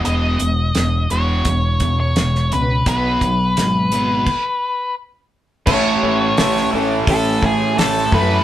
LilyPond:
<<
  \new Staff \with { instrumentName = "Lead electric guitar" } { \time 4/4 \key b \major \tempo 4 = 85 dis''4. cis''4~ cis''16 cis''8. b'8 | b'2. r4 | \key a \lydian cis''4. r8 a'8 gis'8 a'8 b'8 | }
  \new Staff \with { instrumentName = "Upright piano" } { \time 4/4 \key b \major r1 | r1 | \key a \lydian <cis' e' a'>8 <cis' e' a'>8 <cis' e' a'>8 <cis' e' a'>8 <cis' e' a'>8 <cis' e' a'>8 <cis' e' a'>8 <cis' e' a'>8 | }
  \new Staff \with { instrumentName = "Overdriven electric guitar" } { \clef bass \time 4/4 \key b \major r1 | r1 | \key a \lydian <a, e a>4. <a, e a>4. <a, e a>4 | }
  \new Staff \with { instrumentName = "Overdriven electric guitar" } { \clef bass \time 4/4 \key b \major <e, b, e>8 <e, b,>8 <e, b,>8 <e, b, e>8 <e, b,>8 <e, b,>8 <e, b,>8 <e, b,>8 | <b, fis b>8 <b, fis>8 <b, fis>8 <b, fis b>8 r2 | \key a \lydian <a, e a>2.~ <a, e a>8 <a, e a>8 | }
  \new Staff \with { instrumentName = "Fingered electric bass" } { \clef bass \time 4/4 \key b \major e,,8 e,,8 e,,8 e,,8 e,,8 e,8 e,,8 cis,8 | b,,8 b,,8 gis,,4 r2 | \key a \lydian a,,8 a,,8 a,,8 a,,8 a,,4 a,,8 fis,8 | }
  \new DrumStaff \with { instrumentName = "Drums" } \drummode { \time 4/4 hh8 hh8 <hh sn>8 hh8 <hh bd>8 <hh bd>8 <hh sn>16 sn16 hh8 | <hh bd>8 <hh bd>8 <hh sn>8 hh8 <cymc bd>4 r4 | <cymc bd>4 <hho sn>16 sn8. <hho bd>8 bd8 <hho sn>8 bd8 | }
>>